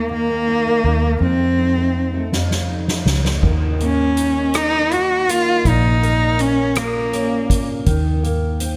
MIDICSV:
0, 0, Header, 1, 5, 480
1, 0, Start_track
1, 0, Tempo, 739827
1, 786, Time_signature, 6, 3, 24, 8
1, 5687, End_track
2, 0, Start_track
2, 0, Title_t, "Cello"
2, 0, Program_c, 0, 42
2, 0, Note_on_c, 0, 58, 68
2, 73, Note_off_c, 0, 58, 0
2, 80, Note_on_c, 0, 58, 82
2, 767, Note_off_c, 0, 58, 0
2, 798, Note_on_c, 0, 60, 78
2, 1486, Note_off_c, 0, 60, 0
2, 2480, Note_on_c, 0, 61, 75
2, 2957, Note_on_c, 0, 63, 91
2, 2966, Note_off_c, 0, 61, 0
2, 3200, Note_on_c, 0, 66, 81
2, 3210, Note_off_c, 0, 63, 0
2, 3439, Note_on_c, 0, 65, 91
2, 3448, Note_off_c, 0, 66, 0
2, 3682, Note_on_c, 0, 63, 78
2, 3692, Note_off_c, 0, 65, 0
2, 4158, Note_on_c, 0, 61, 82
2, 4167, Note_off_c, 0, 63, 0
2, 4399, Note_on_c, 0, 58, 72
2, 4409, Note_off_c, 0, 61, 0
2, 4932, Note_off_c, 0, 58, 0
2, 5687, End_track
3, 0, Start_track
3, 0, Title_t, "Nylon-string guitar"
3, 0, Program_c, 1, 24
3, 0, Note_on_c, 1, 58, 46
3, 0, Note_on_c, 1, 63, 43
3, 66, Note_on_c, 1, 51, 54
3, 182, Note_off_c, 1, 58, 0
3, 190, Note_on_c, 1, 58, 44
3, 304, Note_off_c, 1, 63, 0
3, 307, Note_on_c, 1, 63, 51
3, 419, Note_off_c, 1, 58, 0
3, 427, Note_on_c, 1, 58, 52
3, 545, Note_off_c, 1, 63, 0
3, 548, Note_on_c, 1, 63, 45
3, 660, Note_off_c, 1, 58, 0
3, 667, Note_on_c, 1, 58, 51
3, 786, Note_on_c, 1, 41, 64
3, 835, Note_off_c, 1, 58, 0
3, 903, Note_on_c, 1, 57, 52
3, 923, Note_off_c, 1, 51, 0
3, 923, Note_off_c, 1, 63, 0
3, 1028, Note_on_c, 1, 63, 51
3, 1141, Note_off_c, 1, 57, 0
3, 1149, Note_on_c, 1, 57, 39
3, 1264, Note_off_c, 1, 63, 0
3, 1267, Note_on_c, 1, 63, 38
3, 1380, Note_off_c, 1, 57, 0
3, 1388, Note_on_c, 1, 57, 48
3, 1504, Note_off_c, 1, 41, 0
3, 1511, Note_on_c, 1, 41, 60
3, 1620, Note_off_c, 1, 57, 0
3, 1628, Note_on_c, 1, 57, 41
3, 1745, Note_off_c, 1, 63, 0
3, 1748, Note_on_c, 1, 63, 46
3, 1867, Note_off_c, 1, 57, 0
3, 1874, Note_on_c, 1, 57, 45
3, 1992, Note_off_c, 1, 63, 0
3, 1995, Note_on_c, 1, 63, 44
3, 2103, Note_off_c, 1, 57, 0
3, 2111, Note_on_c, 1, 57, 47
3, 2228, Note_on_c, 1, 51, 75
3, 2276, Note_off_c, 1, 57, 0
3, 2277, Note_off_c, 1, 41, 0
3, 2468, Note_on_c, 1, 58, 55
3, 2707, Note_off_c, 1, 63, 0
3, 2710, Note_on_c, 1, 63, 49
3, 3180, Note_off_c, 1, 63, 0
3, 3188, Note_on_c, 1, 63, 50
3, 3423, Note_off_c, 1, 58, 0
3, 3425, Note_on_c, 1, 58, 52
3, 3667, Note_off_c, 1, 51, 0
3, 3670, Note_on_c, 1, 46, 73
3, 3715, Note_off_c, 1, 63, 0
3, 3906, Note_off_c, 1, 58, 0
3, 3909, Note_on_c, 1, 58, 57
3, 4146, Note_on_c, 1, 61, 50
3, 4387, Note_on_c, 1, 65, 53
3, 4616, Note_off_c, 1, 61, 0
3, 4624, Note_on_c, 1, 61, 54
3, 4860, Note_off_c, 1, 58, 0
3, 4863, Note_on_c, 1, 58, 49
3, 5103, Note_on_c, 1, 51, 75
3, 5107, Note_off_c, 1, 46, 0
3, 5152, Note_off_c, 1, 61, 0
3, 5154, Note_off_c, 1, 65, 0
3, 5338, Note_off_c, 1, 58, 0
3, 5341, Note_on_c, 1, 58, 59
3, 5580, Note_on_c, 1, 60, 51
3, 5687, Note_off_c, 1, 51, 0
3, 5687, Note_off_c, 1, 58, 0
3, 5687, Note_off_c, 1, 60, 0
3, 5687, End_track
4, 0, Start_track
4, 0, Title_t, "Fingered electric bass"
4, 0, Program_c, 2, 33
4, 0, Note_on_c, 2, 39, 77
4, 521, Note_off_c, 2, 39, 0
4, 547, Note_on_c, 2, 39, 70
4, 772, Note_off_c, 2, 39, 0
4, 783, Note_on_c, 2, 41, 78
4, 1959, Note_off_c, 2, 41, 0
4, 1982, Note_on_c, 2, 37, 61
4, 2210, Note_off_c, 2, 37, 0
4, 2224, Note_on_c, 2, 39, 91
4, 3639, Note_off_c, 2, 39, 0
4, 3666, Note_on_c, 2, 34, 84
4, 5079, Note_off_c, 2, 34, 0
4, 5105, Note_on_c, 2, 39, 93
4, 5687, Note_off_c, 2, 39, 0
4, 5687, End_track
5, 0, Start_track
5, 0, Title_t, "Drums"
5, 1509, Note_on_c, 9, 38, 49
5, 1574, Note_off_c, 9, 38, 0
5, 1628, Note_on_c, 9, 38, 46
5, 1693, Note_off_c, 9, 38, 0
5, 1870, Note_on_c, 9, 38, 55
5, 1935, Note_off_c, 9, 38, 0
5, 1988, Note_on_c, 9, 38, 72
5, 2053, Note_off_c, 9, 38, 0
5, 2108, Note_on_c, 9, 38, 64
5, 2173, Note_off_c, 9, 38, 0
5, 2226, Note_on_c, 9, 36, 82
5, 2226, Note_on_c, 9, 49, 72
5, 2291, Note_off_c, 9, 36, 0
5, 2291, Note_off_c, 9, 49, 0
5, 2468, Note_on_c, 9, 42, 39
5, 2533, Note_off_c, 9, 42, 0
5, 2705, Note_on_c, 9, 42, 59
5, 2770, Note_off_c, 9, 42, 0
5, 2944, Note_on_c, 9, 42, 63
5, 2952, Note_on_c, 9, 37, 87
5, 3008, Note_off_c, 9, 42, 0
5, 3017, Note_off_c, 9, 37, 0
5, 3188, Note_on_c, 9, 42, 45
5, 3253, Note_off_c, 9, 42, 0
5, 3434, Note_on_c, 9, 42, 65
5, 3499, Note_off_c, 9, 42, 0
5, 3667, Note_on_c, 9, 42, 63
5, 3668, Note_on_c, 9, 36, 83
5, 3732, Note_off_c, 9, 42, 0
5, 3733, Note_off_c, 9, 36, 0
5, 3914, Note_on_c, 9, 42, 43
5, 3979, Note_off_c, 9, 42, 0
5, 4146, Note_on_c, 9, 42, 60
5, 4210, Note_off_c, 9, 42, 0
5, 4382, Note_on_c, 9, 42, 66
5, 4390, Note_on_c, 9, 37, 86
5, 4447, Note_off_c, 9, 42, 0
5, 4455, Note_off_c, 9, 37, 0
5, 4627, Note_on_c, 9, 42, 53
5, 4692, Note_off_c, 9, 42, 0
5, 4866, Note_on_c, 9, 36, 83
5, 4869, Note_on_c, 9, 42, 69
5, 4931, Note_off_c, 9, 36, 0
5, 4934, Note_off_c, 9, 42, 0
5, 5102, Note_on_c, 9, 42, 64
5, 5105, Note_on_c, 9, 36, 87
5, 5167, Note_off_c, 9, 42, 0
5, 5169, Note_off_c, 9, 36, 0
5, 5349, Note_on_c, 9, 42, 44
5, 5413, Note_off_c, 9, 42, 0
5, 5580, Note_on_c, 9, 42, 63
5, 5645, Note_off_c, 9, 42, 0
5, 5687, End_track
0, 0, End_of_file